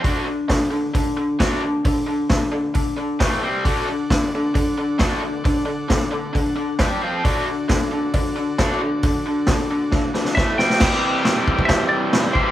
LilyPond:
<<
  \new Staff \with { instrumentName = "Electric slide guitar" } { \time 4/4 \key d \mixolydian \tempo 4 = 134 r1 | r1 | r1 | r1 |
r1 | r2. e''8 g''8~ | g''2 e''8 d''4 c''8 | }
  \new Staff \with { instrumentName = "Transistor combo organ" } { \time 4/4 \key d \mixolydian << { r1 | r1 | r1 | r4. d''8 fis''8 fis''8 g''4 |
r1 | r2 r8 d''8 a''16 g''8. | r1 | } \\ { r1 | r1 | <a' d'' fis''>1~ | <a' d'' fis''>2. r4 |
<fis' a' d''>1~ | <fis' a' d''>2. r4 | <g' c'' e''>1 | } >> }
  \new Staff \with { instrumentName = "Overdriven electric guitar" } { \time 4/4 \key d \mixolydian <d d' fis'>8 <d d'>8 <d d'>8 <d d'>8 <d d'>8 <d d'>8 <d d' fis'>8 <d d'>8 | <d d'>8 <d d'>8 <d d'>8 <d d'>8 <d d'>8 <d d'>8 <a, e a>8 <c g c'>8 | <d d' fis'>8 <d d'>8 <d d'>8 <d d'>8 <d d'>8 <d d'>8 <d d' fis'>8 <d d'>8 | <d d'>8 <d d'>8 <d d'>8 <d d'>8 <d d'>8 <d d'>8 <g d' g'>8 <f c' f'>8 |
<d d' fis'>8 <d d'>8 <d d'>8 <d d'>8 <d d'>8 <d d'>8 <d d' fis'>8 <d d'>8 | <d d'>8 <d d'>8 <d d'>8 <d d'>8 <d d'>8 <d d'>8 <a, e a>8 <c g c'>8 | <c e g c' g'>2.~ <c e g c' g'>8 <c e g c' g'>8 | }
  \new DrumStaff \with { instrumentName = "Drums" } \drummode { \time 4/4 <hho bd>4 <hho bd sn>4 <hho bd>4 <hho bd sn>4 | <hho bd>4 <hho bd sn>4 <hho bd>4 <hho bd sn>4 | <hho bd>4 <hho bd sn>4 <hho bd>4 <hho bd sn>4 | <hho bd>4 <hho bd sn>4 <hho bd>4 <hho bd sn>4 |
<hho bd>4 <hho bd sn>4 <hho bd>4 <hho bd sn>4 | <hho bd>4 <hho bd sn>4 <bd sn>8 sn16 sn16 <bd sn>8 sn16 sn16 | <cymc bd sn>4 <cymc sn>8 bd16 bd16 <cymc bd sn>4 <cymc sn>8 bd8 | }
>>